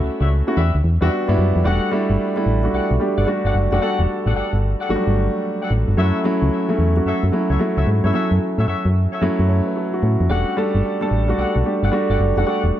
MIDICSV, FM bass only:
0, 0, Header, 1, 2, 480
1, 0, Start_track
1, 0, Tempo, 540541
1, 1464, Time_signature, 4, 2, 24, 8
1, 11365, End_track
2, 0, Start_track
2, 0, Title_t, "FM bass"
2, 0, Program_c, 0, 39
2, 184, Note_on_c, 0, 37, 98
2, 378, Note_off_c, 0, 37, 0
2, 507, Note_on_c, 0, 40, 110
2, 633, Note_off_c, 0, 40, 0
2, 663, Note_on_c, 0, 38, 81
2, 731, Note_off_c, 0, 38, 0
2, 747, Note_on_c, 0, 40, 94
2, 873, Note_off_c, 0, 40, 0
2, 903, Note_on_c, 0, 40, 92
2, 971, Note_off_c, 0, 40, 0
2, 1144, Note_on_c, 0, 43, 89
2, 1211, Note_off_c, 0, 43, 0
2, 1229, Note_on_c, 0, 42, 90
2, 1354, Note_off_c, 0, 42, 0
2, 1384, Note_on_c, 0, 41, 101
2, 1451, Note_off_c, 0, 41, 0
2, 1467, Note_on_c, 0, 28, 107
2, 1593, Note_off_c, 0, 28, 0
2, 1864, Note_on_c, 0, 31, 98
2, 1931, Note_off_c, 0, 31, 0
2, 2187, Note_on_c, 0, 33, 91
2, 2382, Note_off_c, 0, 33, 0
2, 2428, Note_on_c, 0, 35, 45
2, 2490, Note_off_c, 0, 35, 0
2, 2584, Note_on_c, 0, 35, 89
2, 2651, Note_off_c, 0, 35, 0
2, 2824, Note_on_c, 0, 31, 94
2, 2891, Note_off_c, 0, 31, 0
2, 3062, Note_on_c, 0, 31, 81
2, 3130, Note_off_c, 0, 31, 0
2, 3149, Note_on_c, 0, 30, 91
2, 3274, Note_off_c, 0, 30, 0
2, 3303, Note_on_c, 0, 29, 85
2, 3371, Note_off_c, 0, 29, 0
2, 3545, Note_on_c, 0, 28, 98
2, 3612, Note_off_c, 0, 28, 0
2, 3785, Note_on_c, 0, 33, 97
2, 3852, Note_off_c, 0, 33, 0
2, 4024, Note_on_c, 0, 31, 91
2, 4218, Note_off_c, 0, 31, 0
2, 4350, Note_on_c, 0, 31, 49
2, 4411, Note_off_c, 0, 31, 0
2, 4505, Note_on_c, 0, 31, 94
2, 4698, Note_off_c, 0, 31, 0
2, 5067, Note_on_c, 0, 33, 96
2, 5193, Note_off_c, 0, 33, 0
2, 5223, Note_on_c, 0, 31, 99
2, 5291, Note_off_c, 0, 31, 0
2, 5307, Note_on_c, 0, 42, 104
2, 5433, Note_off_c, 0, 42, 0
2, 5704, Note_on_c, 0, 37, 102
2, 5771, Note_off_c, 0, 37, 0
2, 6027, Note_on_c, 0, 40, 89
2, 6222, Note_off_c, 0, 40, 0
2, 6267, Note_on_c, 0, 42, 49
2, 6329, Note_off_c, 0, 42, 0
2, 6423, Note_on_c, 0, 42, 85
2, 6491, Note_off_c, 0, 42, 0
2, 6662, Note_on_c, 0, 37, 88
2, 6730, Note_off_c, 0, 37, 0
2, 6904, Note_on_c, 0, 37, 84
2, 6971, Note_off_c, 0, 37, 0
2, 6986, Note_on_c, 0, 44, 100
2, 7112, Note_off_c, 0, 44, 0
2, 7142, Note_on_c, 0, 43, 88
2, 7210, Note_off_c, 0, 43, 0
2, 7382, Note_on_c, 0, 42, 95
2, 7450, Note_off_c, 0, 42, 0
2, 7621, Note_on_c, 0, 45, 90
2, 7690, Note_off_c, 0, 45, 0
2, 7707, Note_on_c, 0, 42, 48
2, 7768, Note_off_c, 0, 42, 0
2, 7862, Note_on_c, 0, 42, 95
2, 8057, Note_off_c, 0, 42, 0
2, 8186, Note_on_c, 0, 42, 48
2, 8248, Note_off_c, 0, 42, 0
2, 8342, Note_on_c, 0, 42, 91
2, 8537, Note_off_c, 0, 42, 0
2, 8905, Note_on_c, 0, 45, 94
2, 9032, Note_off_c, 0, 45, 0
2, 9062, Note_on_c, 0, 41, 91
2, 9130, Note_off_c, 0, 41, 0
2, 9147, Note_on_c, 0, 28, 102
2, 9273, Note_off_c, 0, 28, 0
2, 9544, Note_on_c, 0, 31, 108
2, 9611, Note_off_c, 0, 31, 0
2, 9868, Note_on_c, 0, 33, 83
2, 10062, Note_off_c, 0, 33, 0
2, 10108, Note_on_c, 0, 35, 49
2, 10169, Note_off_c, 0, 35, 0
2, 10265, Note_on_c, 0, 35, 83
2, 10332, Note_off_c, 0, 35, 0
2, 10505, Note_on_c, 0, 31, 94
2, 10572, Note_off_c, 0, 31, 0
2, 10745, Note_on_c, 0, 31, 81
2, 10812, Note_off_c, 0, 31, 0
2, 10830, Note_on_c, 0, 30, 90
2, 10954, Note_off_c, 0, 30, 0
2, 10984, Note_on_c, 0, 29, 86
2, 11051, Note_off_c, 0, 29, 0
2, 11222, Note_on_c, 0, 28, 95
2, 11290, Note_off_c, 0, 28, 0
2, 11365, End_track
0, 0, End_of_file